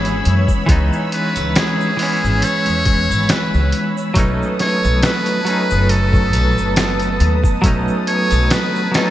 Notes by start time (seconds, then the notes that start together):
Already playing: G#1 E3 G#3 B3 C#4 G#4 C#5 B5 E6
0.05 closed hi-hat, shaker
0.25 F#2, closed hi-hat
0.48 kick, shaker
0.66 C#2 E3 G#3 B3, kick, closed hi-hat, shaker
0.72 D#4
0.93 shaker
1.12 B4, closed hi-hat
1.36 C#2, closed hi-hat, triangle, shaker
1.56 G#4, snare, closed hi-hat, shaker
1.81 shaker
1.97 E3 G#3 B3, open hi-hat
2.02 C#4
2.24 G#1, shaker
2.42 C#5, closed hi-hat, triangle, shaker
2.66 E2, closed hi-hat, shaker
2.85 kick, closed hi-hat
3.10 G#1, triangle, shaker
3.29 B4, snare, closed hi-hat, shaker
3.54 C#2, shaker
3.72 closed hi-hat
3.97 shaker
4.14 B1 F#3 A3 C#4 B4 A5 D#6, kick, closed hi-hat
4.18 D#4, shaker
4.43 shaker
4.59 C#5, snare, closed hi-hat
4.83 B1, triangle, shaker
5.03 B4, snare, closed hi-hat, shaker
5.26 closed hi-hat, shaker
5.45 F#3 A3 C#4, closed hi-hat
5.50 D#4
5.71 F#1, shaker
5.89 A4, closed hi-hat, shaker
6.13 kick, shaker
6.33 B1, closed hi-hat, triangle
6.58 F#1, shaker
6.76 A4, snare, closed hi-hat, shaker
7.00 closed hi-hat, shaker
7.20 D#2, closed hi-hat
7.44 kick, shaker
7.62 B1 F#3 A3 C#4, kick, closed hi-hat, shaker
7.68 D#4
7.88 shaker
8.07 C#5, closed hi-hat
8.31 B1, closed hi-hat, triangle, shaker
8.50 B4, snare, closed hi-hat, shaker
8.76 shaker
8.92 F#3 A3 C#4, snare, closed hi-hat
8.96 D#4 A4